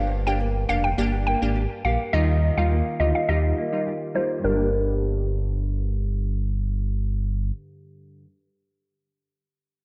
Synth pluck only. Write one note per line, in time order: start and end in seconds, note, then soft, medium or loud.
0.27 0.37 G5 medium
0.69 0.81 F5 medium
0.84 0.95 G5 medium
1.27 1.39 G5 medium
1.85 1.97 F5 medium
2.13 2.36 D#5 loud
2.58 2.68 F5 medium
3.00 3.12 D#5 medium
3.15 3.26 F5 medium
3.29 3.70 D#5 loud
4.15 4.27 C5 medium
4.44 6.13 A#4 medium